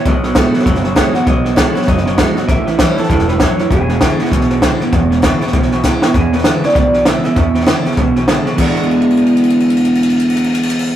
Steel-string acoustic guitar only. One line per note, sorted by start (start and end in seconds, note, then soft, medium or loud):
0.06 0.64 B2 medium
0.36 0.65 D#3 medium
0.36 0.65 A3 medium
0.36 0.66 B3 loud
0.36 0.66 F#4 loud
0.67 1.25 F#2 loud
0.96 1.14 D#3 medium
0.96 1.14 A3 medium
0.96 1.14 B3 medium
0.96 1.14 F#4 loud
1.15 1.27 B3 soft
1.15 1.27 F#4 medium
1.27 1.86 B2 medium
1.56 1.75 D#3 loud
1.56 1.75 A3 loud
1.56 1.75 B3 loud
1.56 1.74 F#4 medium
1.75 1.88 B3 medium
1.75 1.87 F#4 medium
1.88 2.47 F#2 medium
2.18 2.36 D#3 medium
2.18 2.36 A3 medium
2.18 2.37 B3 medium
2.18 2.36 F#4 loud
2.37 2.49 B3 soft
2.37 2.49 F#4 medium
2.49 3.08 A2 loud
2.80 2.97 E3 medium
2.80 2.97 G3 loud
2.80 2.98 C#4 loud
2.80 2.97 E4 loud
2.98 3.10 C#4 medium
2.98 3.10 E4 medium
3.11 3.40 G2 medium
3.40 3.70 F#2 medium
3.72 4.30 E2 medium
4.01 4.19 D3 loud
4.01 4.19 G#3 loud
4.01 4.20 B3 loud
4.01 4.19 E4 loud
4.20 4.32 B3 medium
4.20 4.31 E4 medium
4.33 4.91 B2 loud
4.62 4.80 D3 medium
4.62 4.80 G#3 loud
4.62 4.81 B3 loud
4.62 4.79 E4 medium
4.80 4.93 B3 medium
4.80 4.92 E4 medium
4.93 5.51 E2 medium
5.22 5.40 D3 medium
5.22 5.41 G#3 loud
5.22 5.41 B3 loud
5.22 5.40 E4 loud
5.41 5.54 B3 medium
5.41 5.53 E4 medium
5.53 6.12 B2 medium
5.83 6.01 D3 medium
5.83 6.02 G#3 medium
5.83 6.02 B3 loud
5.83 6.01 E4 loud
6.03 6.15 B3 medium
6.03 6.14 E4 medium
6.15 6.73 E2 medium
6.45 6.63 D3 medium
6.45 6.63 G#3 loud
6.45 6.63 B3 loud
6.45 6.63 E4 loud
6.64 6.76 B3 soft
6.64 6.75 E4 medium
6.76 7.34 B2 medium
7.06 7.24 D3 loud
7.06 7.24 G#3 medium
7.06 7.24 B3 loud
7.06 7.23 E4 loud
7.24 7.36 B3 soft
7.24 7.36 E4 medium
7.36 7.95 E2 medium
7.66 7.84 D3 medium
7.66 7.85 G#3 medium
7.66 7.85 B3 loud
7.66 7.84 E4 loud
7.85 7.98 B3 medium
7.85 7.97 E4 medium
7.97 8.56 B2 medium
8.28 8.57 D3 medium
8.28 8.58 G#3 medium
8.28 8.58 B3 medium
8.28 8.58 E4 loud
8.58 10.96 E2 medium
8.58 10.96 B2 medium
8.58 10.96 D3 medium
8.58 10.96 G#3 medium
8.58 10.96 B3 medium
8.58 10.96 E4 medium